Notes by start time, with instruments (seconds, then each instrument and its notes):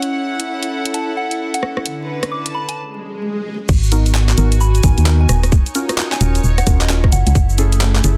Already playing: analog synth pad C#4 C#5, string section E4 C#5 F#5
0.00 string section A4, closed hi-hat
0.40 closed hi-hat
0.63 closed hi-hat
0.85 closed hi-hat
0.94 synth bell A5, closed hi-hat
1.17 synth bell F#5
1.31 closed hi-hat
1.54 synth bell F#5, closed hi-hat
1.63 cross-stick
1.77 cross-stick
1.86 string section D3, closed hi-hat
2.02 string section B4
2.23 cross-stick, closed hi-hat
2.31 synth bell D6
2.41 string section A5
2.46 closed hi-hat
2.54 synth bell B5
2.69 synth bell A5, closed hi-hat
2.77 swell
3.69 fm bass G#1, string section F#4, kick, crash, cabasa
3.83 cabasa
3.92 synth stab B3 D#4 F#4 A#4, closed hi-hat, cabasa
4.06 closed hi-hat, cabasa
4.15 clap, cabasa
4.29 clap, closed hi-hat, cabasa
4.35 fm bass G#1, synth stab B3 D#4 F#4 A#4, string section G#5, closed hi-hat, cabasa
4.52 closed hi-hat, cabasa
4.60 synth bell B5, cabasa
4.75 closed hi-hat, cabasa
4.83 fm bass G#1, synth stab B3 D#4 F#4 A#4, synth bell G#5, kick, closed hi-hat, cabasa
4.98 fm bass D#2, closed hi-hat, cabasa
5.06 synth stab B3 D#4 F#4 A#4, clap, cabasa
5.21 synth bell G#5
5.29 fm bass D#1, string section D#4, cross-stick, closed hi-hat, cabasa
5.43 string section C#5, cross-stick, closed hi-hat, cabasa
5.52 kick, cabasa
5.66 closed hi-hat, cabasa
5.75 synth stab C#4 F4 F#4 A#4, closed hi-hat, cabasa
5.89 cross-stick, closed hi-hat, cabasa
5.98 clap, cabasa
6.12 synth bell G#5, clap, closed hi-hat, cabasa
6.21 fm bass D#1, synth stab C#4 F4 F#4 A#4, synth bell G#5, closed hi-hat, cabasa
6.35 closed hi-hat, cabasa
6.44 fm bass D#1, cabasa
6.58 synth bell F#5, cross-stick, closed hi-hat, cabasa
6.67 fm bass D#1, synth stab C#4 F4 F#4 A#4, kick, closed hi-hat, cabasa
6.81 synth bell D#5, clap, closed hi-hat, cabasa
6.89 synth stab C#4 F4 F#4 A#4, clap, cabasa
7.04 kick, cross-stick
7.12 fm bass F#1, string section E4, synth bell F#5, closed hi-hat, cabasa
7.27 fm bass C#2, synth bell F#5, closed hi-hat, cabasa
7.35 fm bass F#1, kick, cabasa
7.46 string section A3, cabasa
7.58 synth stab C#4 E4 G#4 A4, closed hi-hat, cabasa
7.72 closed hi-hat, cabasa
7.81 clap, cabasa
7.95 clap, closed hi-hat, cabasa
8.04 fm bass F#1, synth stab C#4 E4 G#4 A4, closed hi-hat, cabasa